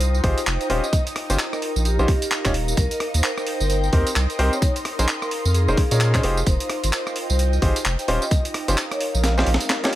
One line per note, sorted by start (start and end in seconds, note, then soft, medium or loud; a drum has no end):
0.00 0.21 C2 medium
0.00 9.95 D#4 medium
0.00 1.55 F4 medium
0.00 0.12 C5 loud
0.00 1.55 C5 medium
0.00 9.95 D#5 medium
0.00 1.55 G5 medium
0.00 closed hi-hat medium
0.00 tambourine medium
0.14 tambourine soft
0.24 0.35 G#1 loud
0.24 0.37 D#4 medium
0.24 0.37 F4 medium
0.24 0.37 G4 medium
0.24 0.37 G#4 medium
0.24 0.37 C5 medium
0.24 0.45 C5 loud
0.24 kick loud
0.24 open hi-hat loud
0.38 closed hi-hat medium
0.38 tambourine medium
0.47 0.58 F1 loud
0.47 clap loud
0.47 tambourine medium
0.61 0.73 C5 medium
0.61 closed hi-hat medium
0.61 tambourine soft
0.70 0.81 D#1 medium
0.70 0.83 C#4 medium
0.70 3.52 D#4 medium
0.70 0.83 D#4 medium
0.70 0.83 F4 medium
0.70 0.83 G4 medium
0.70 0.83 C5 loud
0.70 open hi-hat loud
0.84 0.96 D#5 medium
0.84 tambourine medium
0.93 kick loud
0.93 closed hi-hat medium
0.93 tambourine medium
1.07 closed hi-hat medium
1.07 tambourine soft
1.16 cross-stick medium
1.16 open hi-hat loud
1.23 3.52 A#4 medium
1.30 1.37 G1 medium
1.30 1.35 C#4 medium
1.30 1.35 D#4 medium
1.30 1.35 F4 medium
1.30 1.35 G4 medium
1.30 1.35 C5 medium
1.30 closed hi-hat medium
1.30 tambourine medium
1.39 clap loud
1.39 tambourine medium
1.53 1.73 A#4 loud
1.53 cross-stick medium
1.53 tambourine soft
1.62 3.52 F5 medium
1.62 open hi-hat loud
1.76 1.98 A#1 medium
1.76 tambourine medium
1.85 2.70 G4 medium
1.85 closed hi-hat medium
1.85 tambourine medium
1.99 2.06 A#1 loud
1.99 2.08 C#4 medium
1.99 2.08 D#4 medium
1.99 2.08 F4 medium
1.99 2.08 G4 medium
1.99 2.08 C5 loud
1.99 tambourine soft
2.08 kick loud
2.08 open hi-hat loud
2.22 closed hi-hat medium
2.22 tambourine medium
2.31 clap loud
2.31 tambourine medium
2.45 2.75 D#1 medium
2.45 2.51 C#4 medium
2.45 2.51 D#4 medium
2.45 2.51 F4 medium
2.45 2.51 G4 medium
2.45 2.51 C#5 medium
2.45 kick medium
2.45 clap medium
2.45 closed hi-hat soft
2.45 tambourine soft
2.54 open hi-hat loud
2.68 tambourine medium
2.77 2.89 C2 medium
2.77 3.06 A#4 loud
2.77 5.25 C5 medium
2.77 kick loud
2.77 closed hi-hat medium
2.77 tambourine medium
2.91 closed hi-hat medium
2.91 tambourine soft
3.00 cross-stick medium
3.00 open hi-hat loud
3.11 3.22 D#2 medium
3.11 5.28 G5 medium
3.11 closed hi-hat medium
3.11 tambourine medium
3.24 3.45 A#4 medium
3.24 clap loud
3.24 tambourine medium
3.38 cross-stick medium
3.38 tambourine soft
3.47 open hi-hat loud
3.60 3.90 G1 medium
3.60 3.81 A#4 loud
3.60 6.98 C6 medium
3.60 tambourine medium
3.70 closed hi-hat medium
3.70 tambourine medium
3.84 tambourine soft
3.93 4.04 D#2 loud
3.93 4.06 C4 medium
3.93 4.06 D#4 medium
3.93 4.06 G4 medium
3.93 4.06 A#4 medium
3.93 4.14 A#4 medium
3.93 4.06 C5 medium
3.93 kick loud
3.93 open hi-hat loud
4.07 closed hi-hat medium
4.07 tambourine medium
4.16 4.27 C2 loud
4.16 clap loud
4.16 tambourine medium
4.30 4.42 A#4 medium
4.30 closed hi-hat medium
4.30 tambourine soft
4.39 4.50 C2 medium
4.39 4.52 C4 loud
4.39 4.52 D#4 medium
4.39 4.52 G4 medium
4.39 4.52 A#4 medium
4.39 4.52 C5 loud
4.39 open hi-hat loud
4.53 4.65 C#5 medium
4.53 tambourine medium
4.62 6.98 A#4 medium
4.62 kick loud
4.62 closed hi-hat medium
4.62 tambourine medium
4.76 closed hi-hat medium
4.76 tambourine soft
4.85 cross-stick medium
4.85 open hi-hat loud
4.89 6.99 F5 medium
4.99 5.07 A#1 medium
4.99 5.05 C#4 medium
4.99 5.05 D#4 medium
4.99 5.05 G#4 medium
4.99 5.05 A#4 medium
4.99 5.05 C5 loud
4.99 closed hi-hat medium
4.99 tambourine medium
5.08 clap loud
5.08 tambourine medium
5.22 5.42 A#4 medium
5.22 cross-stick soft
5.22 tambourine soft
5.31 open hi-hat loud
5.45 5.68 F2 medium
5.45 tambourine medium
5.54 6.39 G#4 loud
5.54 closed hi-hat medium
5.54 tambourine medium
5.68 5.76 F1 loud
5.68 5.77 C#4 medium
5.68 5.77 D#4 medium
5.68 5.77 G#4 medium
5.68 5.77 A#4 medium
5.68 5.77 C5 loud
5.68 tambourine soft
5.77 kick loud
5.77 open hi-hat loud
5.91 6.21 A#2 medium
5.91 6.11 C#4 medium
5.91 6.11 D#4 medium
5.91 6.11 G#4 medium
5.91 6.11 A#4 medium
5.91 6.11 C#5 medium
5.91 closed hi-hat medium
5.91 tambourine medium
6.00 clap loud
6.00 tambourine medium
6.14 6.20 C#4 medium
6.14 6.20 D#4 medium
6.14 6.20 G#4 medium
6.14 6.20 A#4 medium
6.14 6.20 C5 medium
6.14 kick medium
6.14 clap medium
6.14 closed hi-hat medium
6.14 tambourine soft
6.23 6.43 F1 medium
6.23 6.37 D#4 medium
6.23 6.37 F4 medium
6.23 8.93 F4 medium
6.23 6.37 G4 medium
6.23 6.37 G#4 medium
6.23 6.37 C5 loud
6.23 open hi-hat loud
6.37 8.93 C5 medium
6.37 tambourine medium
6.47 6.58 F1 loud
6.47 6.75 C5 loud
6.47 kick loud
6.47 closed hi-hat medium
6.47 tambourine medium
6.60 closed hi-hat medium
6.60 tambourine soft
6.70 cross-stick medium
6.70 open hi-hat loud
6.84 6.91 G#1 medium
6.84 closed hi-hat medium
6.84 tambourine medium
6.93 7.14 C5 medium
6.93 8.93 G5 medium
6.93 clap loud
6.93 tambourine medium
7.07 cross-stick soft
7.07 tambourine soft
7.16 open hi-hat loud
7.30 7.59 C2 medium
7.30 7.50 C5 loud
7.30 tambourine medium
7.39 closed hi-hat medium
7.39 tambourine medium
7.53 tambourine soft
7.62 7.73 G#1 loud
7.62 7.76 D#4 medium
7.62 7.76 F4 medium
7.62 7.76 G4 medium
7.62 7.76 G#4 medium
7.62 7.76 C5 medium
7.62 7.83 C5 loud
7.62 kick loud
7.62 open hi-hat loud
7.76 closed hi-hat medium
7.76 tambourine medium
7.85 7.97 F1 loud
7.85 clap loud
7.85 tambourine medium
7.99 8.11 C5 medium
7.99 closed hi-hat medium
7.99 tambourine soft
8.08 8.20 D#1 medium
8.08 8.22 C#4 loud
8.08 8.22 D#4 medium
8.08 9.95 D#4 medium
8.08 8.22 F4 medium
8.08 8.22 G4 medium
8.08 8.22 C5 loud
8.08 open hi-hat loud
8.22 8.34 D#5 medium
8.22 tambourine medium
8.31 kick loud
8.31 closed hi-hat medium
8.31 tambourine medium
8.45 closed hi-hat medium
8.45 tambourine soft
8.54 9.95 F5 medium
8.54 cross-stick medium
8.54 open hi-hat loud
8.62 9.95 A#4 medium
8.68 8.76 G1 medium
8.68 8.74 C#4 medium
8.68 8.74 D#4 medium
8.68 8.74 F4 medium
8.68 8.74 G4 medium
8.68 8.74 C5 loud
8.68 closed hi-hat medium
8.68 tambourine medium
8.77 clap loud
8.77 tambourine medium
8.91 9.12 C#5 loud
8.91 cross-stick medium
8.91 closed hi-hat soft
8.91 tambourine soft
9.00 open hi-hat loud
9.14 9.44 A#1 medium
9.14 tambourine medium
9.24 9.95 F5 medium
9.24 snare medium
9.24 closed hi-hat medium
9.24 tambourine medium
9.37 9.46 C#4 medium
9.37 9.46 D#4 medium
9.37 9.46 F4 medium
9.37 9.46 G4 medium
9.37 9.46 C5 loud
9.37 snare medium
9.37 tambourine soft
9.47 9.58 A#1 loud
9.47 open hi-hat loud
9.54 snare medium
9.60 closed hi-hat medium
9.60 tambourine medium
9.70 snare medium
9.70 clap loud
9.70 tambourine medium
9.84 9.89 C#4 medium
9.84 9.89 D#4 medium
9.84 9.89 F4 medium
9.84 9.89 G4 medium
9.84 9.89 C#5 medium
9.84 snare loud
9.84 closed hi-hat medium
9.84 tambourine soft